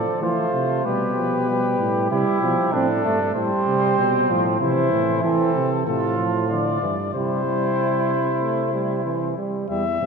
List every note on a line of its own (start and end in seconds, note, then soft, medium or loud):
0.00 0.18 F3 medium
0.00 0.24 A4 medium
0.00 0.19 D5 medium
0.22 0.36 E3 medium
0.22 0.84 A3 medium
0.22 0.87 F4 medium
0.22 0.87 C5 medium
0.53 0.87 C3 medium
0.85 1.79 B2 medium
0.85 1.16 G3 medium
0.85 1.48 G4 medium
0.85 2.10 B4 medium
1.16 1.47 F3 medium
1.48 2.09 G3 medium
1.48 2.10 G4 medium
1.79 2.10 A2 medium
2.11 2.25 C3 medium
2.11 2.41 G3 medium
2.11 2.74 E4 medium
2.11 2.72 G4 medium
2.42 2.57 B2 medium
2.42 2.73 F3 medium
2.72 3.04 A2 medium
2.72 2.88 C4 medium
2.72 3.34 D4 medium
2.72 3.34 A4 medium
3.04 3.35 G2 medium
3.04 3.19 A3 medium
3.35 3.50 A2 medium
3.35 4.28 G3 medium
3.35 4.58 C4 medium
3.35 4.45 C5 medium
3.68 3.98 C3 medium
3.99 4.29 B2 medium
4.30 4.60 A2 medium
4.30 4.60 F3 medium
4.60 4.91 C3 medium
4.60 5.84 E3 medium
4.60 5.22 E4 medium
4.60 5.23 C5 medium
4.92 5.23 A2 medium
5.23 5.55 E3 medium
5.23 5.69 C4 medium
5.23 5.85 A4 medium
5.56 5.86 C3 medium
5.86 6.80 A2 medium
5.86 6.17 C3 medium
5.86 6.84 F4 medium
5.86 6.27 A4 medium
6.18 6.49 F3 medium
6.50 6.81 D3 medium
6.50 7.10 D5 medium
6.82 7.14 G2 medium
6.82 6.96 E3 medium
7.13 9.34 C3 medium
7.13 7.45 G3 medium
7.13 9.35 E4 medium
7.13 9.34 C5 medium
7.45 8.12 G3 medium
8.41 8.71 A3 medium
8.73 9.05 G3 medium
9.06 9.37 E3 medium
9.38 9.69 G3 medium
9.69 10.00 E2 medium
9.69 9.84 G3 medium
9.69 10.06 E5 medium
10.00 10.06 G2 medium
10.00 10.06 C3 medium